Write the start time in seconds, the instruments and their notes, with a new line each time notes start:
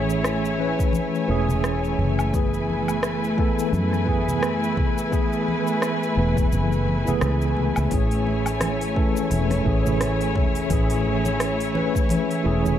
Already playing: fingered electric bass A1, tine electric piano E3 A3 C#4 G#4, string section A3 E4 C#5 G#5
0.10 cabasa
0.24 cross-stick, cabasa
0.45 cabasa
0.58 tine electric piano E3 A3 C#4 B4
0.79 kick, cabasa
0.93 high conga, cabasa
1.15 cabasa
1.28 fingered electric bass E1, tine electric piano E3 A3 C#4 G#4
1.49 low conga, cabasa
1.64 cross-stick, cabasa
1.84 cabasa
1.99 fingered electric bass F#1, low conga
2.19 cabasa, low woodblock
2.32 tine electric piano E3 A3 B3 G#4, string section E4 B4, kick, cabasa
2.54 cabasa
2.70 high conga
2.88 cabasa, low woodblock
3.03 cross-stick, cabasa
3.24 cabasa
3.38 tine electric piano E3 A3 B3 A4, kick
3.59 cabasa
3.73 fingered electric bass F#2, high conga, cabasa
3.93 cross-stick, cabasa
4.06 tine electric piano E3 A3 B3 G#4, kick
4.28 low conga, cabasa
4.43 cross-stick, cabasa
4.64 cabasa
4.77 kick, low conga
4.98 cabasa
5.11 tine electric piano E3 A3 B3 G#4, kick, cabasa
5.33 cabasa
5.48 high conga
5.67 cabasa
5.82 cross-stick, cabasa
6.03 cabasa
6.17 fingered electric bass E1, tine electric piano E3 A3 B3 B4
6.37 kick, cabasa
6.52 fingered electric bass F#1, high conga, cabasa
6.72 cabasa
6.87 high conga
7.05 tine electric piano E3 A3 B3 G#4, low conga, cabasa
7.21 fingered electric bass C#2, cross-stick, cabasa
7.41 cabasa
7.57 low conga
7.76 fingered electric bass C#2, cabasa, low woodblock
7.91 fingered electric bass A1, tine electric piano E3 A3 C#4 G#4, string section E4 C#5, kick, open hi-hat, cabasa
8.11 open hi-hat, cabasa
8.27 muted conga, high conga
8.46 open hi-hat, cabasa, low woodblock
8.61 cross-stick, open hi-hat, muted conga, cabasa
8.81 open hi-hat, cabasa
8.96 tine electric piano E3 A3 C#4 A4, kick
9.15 muted conga, cabasa
9.31 fingered electric bass E1, open hi-hat, high conga, cabasa
9.50 cross-stick, open hi-hat, muted conga, cabasa
9.64 fingered electric bass A1, tine electric piano E3 A3 C#4 G#4, kick
9.86 low conga, cabasa
10.01 cross-stick, open hi-hat, muted conga, cabasa
10.21 open hi-hat, cabasa
10.35 fingered electric bass E1, kick, muted conga, low conga
10.55 open hi-hat, cabasa
10.69 fingered electric bass A1, tine electric piano E3 A3 C#4 G#4, kick, open hi-hat, cabasa
10.90 open hi-hat, muted conga, cabasa
11.05 high conga
11.25 open hi-hat, muted conga, cabasa
11.40 cross-stick, open hi-hat, cabasa
11.60 open hi-hat, cabasa
11.74 tine electric piano E3 A3 C#4 B4, muted conga
11.95 kick, cabasa
12.09 open hi-hat, muted conga, high conga, cabasa
12.31 open hi-hat, cabasa
12.44 fingered electric bass E1, tine electric piano E3 A3 C#4 G#4
12.65 muted conga, low conga, cabasa